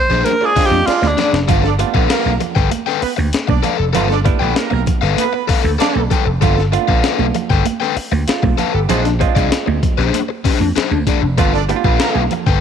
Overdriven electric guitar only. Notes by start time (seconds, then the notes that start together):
0.10 D4 G#4 C5
0.41 muted overdriven electric guitar stroke
0.56 D4 G#4 C5
0.72 muted overdriven electric guitar stroke
0.87 muted overdriven electric guitar stroke
1.02 muted overdriven electric guitar stroke
1.17 D4 G#4 D5
1.33 muted overdriven electric guitar stroke
1.48 A4 B4 F5
1.63 muted overdriven electric guitar stroke
1.79 muted overdriven electric guitar stroke
1.94 A4 B4 F5
2.09 A4 B4 F5
2.40 muted overdriven electric guitar stroke
2.55 A4 B4 G5
2.71 muted overdriven electric guitar stroke
2.86 A4 B4 G5
3.02 muted overdriven electric guitar stroke
3.17 muted overdriven electric guitar stroke
3.48 muted overdriven electric guitar stroke
3.63 A4 B4 F5
3.78 muted overdriven electric guitar stroke
3.93 A4 B4 F5
4.09 muted overdriven electric guitar stroke
4.25 muted overdriven electric guitar stroke
4.39 A4 B4 G5
4.55 muted overdriven electric guitar stroke
4.70 muted overdriven electric guitar stroke
5.01 A4 B4 F5
5.33 muted overdriven electric guitar stroke
5.48 A4 B4 F5
5.64 muted overdriven electric guitar stroke
5.79 A4 B4 F5
5.95 muted overdriven electric guitar stroke
6.11 A4 B4 G5
6.26 muted overdriven electric guitar stroke
6.41 A4 B4 F5
6.57 muted overdriven electric guitar stroke
6.72 muted overdriven electric guitar stroke
6.88 A4 B4 F5
7.04 A4 B4 F5
7.35 muted overdriven electric guitar stroke
7.50 A4 B4 G5
7.65 muted overdriven electric guitar stroke
7.80 A4 B4 G5
7.96 muted overdriven electric guitar stroke
8.12 muted overdriven electric guitar stroke
8.43 muted overdriven electric guitar stroke
8.58 A4 B4 F5
8.74 muted overdriven electric guitar stroke
8.89 D4 G#4 C5
9.05 muted overdriven electric guitar stroke
9.19 muted overdriven electric guitar stroke
9.35 D4 G#4 D5
9.51 muted overdriven electric guitar stroke
9.66 muted overdriven electric guitar stroke
9.98 D4 G#4 C5
10.29 muted overdriven electric guitar stroke
10.45 D4 G#4 C5
10.60 muted overdriven electric guitar stroke
10.76 D4 G#4 C5
10.92 muted overdriven electric guitar stroke
11.07 D4 G#4 D5
11.23 muted overdriven electric guitar stroke
11.38 A4 B4 F5
11.54 muted overdriven electric guitar stroke
11.69 muted overdriven electric guitar stroke
11.85 A4 B4 F5
12.01 A4 B4 F5
12.32 muted overdriven electric guitar stroke
12.47 A4 B4 G5